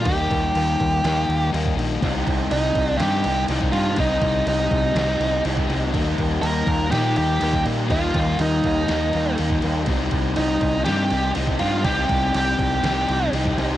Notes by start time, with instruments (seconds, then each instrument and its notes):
0.05 fingered electric bass D#2, overdriven electric guitar D#3 G3 A#3, lead electric guitar G4, kick, crash
0.10 overdriven electric guitar D#4
0.31 fingered electric bass D#2, kick, crash
0.55 fingered electric bass D#2, crash
0.80 fingered electric bass D#2, kick, crash
1.04 fingered electric bass D#2, overdriven electric guitar D#3 G3 A#3 D#4, snare, crash
1.28 fingered electric bass D#2, crash
1.51 fingered electric bass D#2, overdriven electric guitar D#3 G3 A#3 D#4, snare, crash
1.66 kick
1.76 fingered electric bass A#1, overdriven electric guitar G3 A#3 D#4, crash
2.00 fingered electric bass C2, overdriven electric guitar C3 D#3 G3 C4 D#4 G4, kick, crash
2.27 fingered electric bass C2, kick, crash
2.50 fingered electric bass C2, overdriven electric guitar D#3 G3 D#4 G4, crash
2.75 fingered electric bass C2, kick, crash
2.88 lead electric guitar D4
2.97 fingered electric bass G2, overdriven electric guitar C3 D#3 G3 C4, lead electric guitar G4, snare, crash
3.01 overdriven electric guitar D#4 G4
3.24 fingered electric bass C2, overdriven electric guitar G3 D#4 G4, crash
3.47 fingered electric bass C2, overdriven electric guitar C3 D#3 G3 C4 D#4, snare, crash
3.52 overdriven electric guitar G4
3.61 kick
3.72 fingered electric bass G2, overdriven electric guitar G3 C4 D#4, lead electric guitar F4, crash
3.96 fingered electric bass C2, overdriven electric guitar C3 D#3 G3 C4 D#4, kick, crash
4.00 overdriven electric guitar G4
4.21 fingered electric bass C2, kick, crash
4.46 fingered electric bass C2, overdriven electric guitar D#3 G3 D#4 G4, crash
4.71 fingered electric bass C2, kick, crash
4.94 fingered electric bass C2, overdriven electric guitar C3 D#3 G3 C4 D#4 G4, snare, crash
5.20 fingered electric bass C2, overdriven electric guitar G3 D#4 G4, crash
5.43 fingered electric bass C2, overdriven electric guitar C3 D#3 G3 C4 D#4 G4, crash
5.57 kick
5.67 fingered electric bass C2, overdriven electric guitar G3 C4 D#4, crash
5.91 fingered electric bass D#2, overdriven electric guitar D#3 G3 A#3 D#4, kick, crash
5.96 overdriven electric guitar G4
6.18 fingered electric bass D#2, kick, crash
6.42 fingered electric bass D#2, overdriven electric guitar D#3 A#3 D#4 G4, lead electric guitar A#4, crash
6.67 fingered electric bass D#2, kick, crash
6.90 fingered electric bass A#2, overdriven electric guitar D#3 G3 A#3 D#4 G4, snare, crash
7.16 fingered electric bass D#2, overdriven electric guitar A#3 D#4 G4, crash
7.39 fingered electric bass D#2, overdriven electric guitar D#3 G3 A#3 D#4 G4, snare, crash
7.53 kick
7.64 fingered electric bass A#2, overdriven electric guitar G3 A#3 D#4, crash
7.88 fingered electric bass D#2, overdriven electric guitar D#3 G3 A#3 D#4 G4, lead electric guitar F4, kick, crash
8.14 fingered electric bass D#2, kick, crash
8.38 fingered electric bass D#2, overdriven electric guitar D#3 A#3 D#4 G4, crash
8.64 fingered electric bass D#2, kick, crash
8.87 fingered electric bass D#2, overdriven electric guitar D#3 G3 A#3 D#4 G4, snare, crash
9.12 fingered electric bass D#2, overdriven electric guitar A#3 D#4 G4, crash
9.36 fingered electric bass D#2, overdriven electric guitar D#3 G3 A#3 D#4, snare, crash
9.41 overdriven electric guitar G4
9.50 kick
9.61 fingered electric bass D#2, overdriven electric guitar G3 A#3 D#4, crash
9.86 fingered electric bass C2, overdriven electric guitar C3 D#3 G3 C4 D#4, kick, crash
9.90 overdriven electric guitar G4
10.11 fingered electric bass C2, kick, crash
10.36 fingered electric bass C2, overdriven electric guitar D#3 G3 D#4 G4, crash
10.61 fingered electric bass C2, kick, crash
10.85 fingered electric bass G2, overdriven electric guitar C3 D#3 G3 C4 D#4 G4, snare, crash
11.10 fingered electric bass C2, overdriven electric guitar G3 D#4 G4, crash
11.34 fingered electric bass C2, overdriven electric guitar C3 D#3 G3 C4 D#4, snare, crash
11.38 overdriven electric guitar G4
11.47 kick
11.59 fingered electric bass G2, overdriven electric guitar G3 C4 D#4, lead electric guitar F4, crash
11.83 fingered electric bass C2, overdriven electric guitar C3 D#3 G3 C4 D#4 G4, kick, crash
11.87 overdriven electric guitar D#4
12.09 fingered electric bass C2, kick, crash
12.34 fingered electric bass C2, overdriven electric guitar D#3 G3 D#4 G4, crash
12.59 fingered electric bass C2, kick, crash
12.81 fingered electric bass C2, overdriven electric guitar C3 D#3 G3 C4 D#4 G4, snare, crash
12.85 overdriven electric guitar D#4
13.09 fingered electric bass C2, overdriven electric guitar G3 D#4 G4, crash
13.32 fingered electric bass C2, overdriven electric guitar C3 D#3 G3 C4 D#4, snare, crash
13.36 overdriven electric guitar G4
13.45 kick
13.56 fingered electric bass C2, overdriven electric guitar G3 C4 D#4, crash